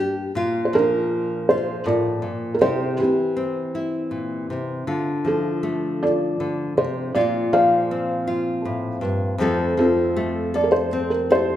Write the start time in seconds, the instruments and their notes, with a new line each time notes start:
Already playing: nylon-string guitar G2 G3 A#3 D4
0.00 nylon-string guitar G4
0.35 nylon-string guitar A#2 F4
0.65 felt piano C5
0.73 nylon-string guitar F3, felt piano D4 F4 A#4
1.49 nylon-string guitar F4, felt piano C5
1.86 nylon-string guitar A2, felt piano F4 A#4 D5
2.22 nylon-string guitar A#2
2.54 felt piano A#4
2.61 nylon-string guitar C3 G4, felt piano E4 G4 C5
2.98 nylon-string guitar E3, felt piano G4
3.02 felt piano C4 E4
3.37 nylon-string guitar C4
3.75 nylon-string guitar E4
4.11 nylon-string guitar A#2
4.50 nylon-string guitar C3
4.87 nylon-string guitar D3 F4
5.25 nylon-string guitar F3, felt piano F4 A4
5.29 felt piano E4
5.63 nylon-string guitar A3
6.03 felt piano F4 A4 D5
6.40 nylon-string guitar D3
6.77 nylon-string guitar C3, felt piano C5
7.15 nylon-string guitar A#2 F4, felt piano F4 D5
7.53 nylon-string guitar F3, felt piano C5 D5 F5
7.91 nylon-string guitar C4
8.27 nylon-string guitar F4
8.65 nylon-string guitar A2
9.01 nylon-string guitar G2
9.38 nylon-string guitar F2 F3 A3 C4 A4
9.77 nylon-string guitar F3, felt piano C4 F4 A4
10.16 nylon-string guitar A3
10.54 nylon-string guitar A4, felt piano D5
10.64 felt piano A#4
10.72 felt piano C5
10.93 nylon-string guitar C4
11.10 felt piano A#4
11.30 felt piano E4 G4 C5, nylon-string guitar A4